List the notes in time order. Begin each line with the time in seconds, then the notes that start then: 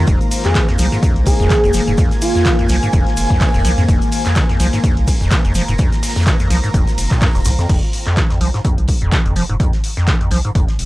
Already playing: D#3 G#3 F4 C5 F5 A#5
0.07 F1 F2 A#3, kick, closed hi-hat, shaker
0.21 closed hi-hat, shaker
0.31 closed hi-hat, open hi-hat, ride, shaker
0.36 G#5
0.44 F2 G#4, snare, clap, closed hi-hat, shaker
0.55 F3, kick, snare, clap, closed hi-hat, shaker
0.68 F2, snare, closed hi-hat
0.78 C2 F3, closed hi-hat, open hi-hat, ride, shaker
0.92 G#2, snare, closed hi-hat, shaker
1.03 F2, kick, closed hi-hat, shaker
1.16 C2, closed hi-hat
1.26 G#4, kick, closed hi-hat, open hi-hat, ride, shaker
1.40 D#1 F2, closed hi-hat, shaker
1.50 F3, kick, snare, clap, closed hi-hat, shaker
1.64 F1 F2, closed hi-hat, shaker
1.73 F3, closed hi-hat, open hi-hat, ride, shaker
1.87 F1 G#2, closed hi-hat, shaker
1.98 F2, kick, closed hi-hat, shaker
2.11 snare, closed hi-hat, shaker
2.22 F4, closed hi-hat, open hi-hat, ride, shaker
2.35 F2, snare, closed hi-hat, shaker
2.45 F3, kick, snare, clap, closed hi-hat, shaker
2.59 F2, closed hi-hat
2.69 C2 F3, closed hi-hat, open hi-hat, ride, shaker
2.83 G#2, closed hi-hat, shaker
2.93 F1 F2, kick, closed hi-hat, shaker
3.07 snare, closed hi-hat
3.17 F1, closed hi-hat, open hi-hat, ride, shaker
3.30 F2, kick, closed hi-hat, shaker
3.40 F3, kick, snare, clap, closed hi-hat, open hi-hat, shaker
3.54 D#1 F2, snare, closed hi-hat, shaker
3.65 C2 F3, snare, closed hi-hat, open hi-hat, ride, shaker
3.78 F2 G#2, snare, closed hi-hat, shaker
3.89 F1 F2, kick, closed hi-hat, shaker
4.01 closed hi-hat, shaker
4.12 closed hi-hat, open hi-hat, ride, shaker
4.17 A#5
4.25 F2, snare, clap, closed hi-hat, shaker
4.35 F3, kick, snare, clap, closed hi-hat, shaker
4.49 F2, snare, closed hi-hat
4.59 C2 F3, closed hi-hat, open hi-hat, ride, shaker
4.73 G#2, snare, closed hi-hat, shaker
4.84 F2, kick, closed hi-hat, shaker
4.97 C2, closed hi-hat
5.07 kick, closed hi-hat, open hi-hat, ride, shaker
5.21 D#1 F2, closed hi-hat, shaker
5.31 F3, kick, snare, clap, closed hi-hat, shaker
5.44 F1 F2, closed hi-hat, shaker
5.54 F3, closed hi-hat, open hi-hat, ride, shaker
5.68 F1 G#2, closed hi-hat, shaker
5.78 F2, kick, closed hi-hat, shaker
5.92 snare, closed hi-hat, shaker
6.03 snare, closed hi-hat, open hi-hat, ride, shaker
6.09 snare, closed hi-hat
6.16 F2, snare, closed hi-hat, shaker
6.20 snare, closed hi-hat
6.26 F3, kick, snare, clap, closed hi-hat, shaker
6.39 F2, closed hi-hat, shaker
6.50 C2 F3, closed hi-hat, open hi-hat, ride, shaker
6.64 G#2, closed hi-hat, shaker
6.74 F1 F2, kick, closed hi-hat, shaker
6.87 snare, closed hi-hat, shaker
6.98 F1, closed hi-hat, open hi-hat, ride, shaker
7.11 A#2, kick, clap, closed hi-hat, shaker
7.21 F2, kick, snare, clap, closed hi-hat, open hi-hat, shaker
7.35 D#1 F2, snare, closed hi-hat, shaker
7.45 C2 G#2, snare, closed hi-hat, open hi-hat, ride, shaker
7.58 F2, snare, closed hi-hat, shaker
7.69 F1 F2, kick, closed hi-hat, crash
7.83 closed hi-hat
7.93 closed hi-hat, open hi-hat
8.06 F2, snare, clap, closed hi-hat
8.17 F3, kick, snare, clap, closed hi-hat
8.30 F2, snare, closed hi-hat
8.41 C2 F3, closed hi-hat, open hi-hat
8.54 G#2, snare, closed hi-hat
8.64 F2, kick, closed hi-hat
8.78 C2, closed hi-hat
8.88 kick, closed hi-hat, open hi-hat
9.02 D#1 F2, closed hi-hat
9.12 F3, kick, snare, clap, closed hi-hat
9.26 F1 F2, closed hi-hat
9.36 F3, closed hi-hat, open hi-hat
9.49 F1 G#2, closed hi-hat
9.60 F2, kick, closed hi-hat
9.73 snare, closed hi-hat
9.84 closed hi-hat, open hi-hat
9.97 F2, snare, closed hi-hat
10.07 F3, kick, snare, clap, closed hi-hat
10.21 F2, closed hi-hat
10.31 C2 F3, closed hi-hat, open hi-hat
10.45 G#2, closed hi-hat
10.55 F1 F2, kick, closed hi-hat
10.68 snare, closed hi-hat
10.79 F1, closed hi-hat, open hi-hat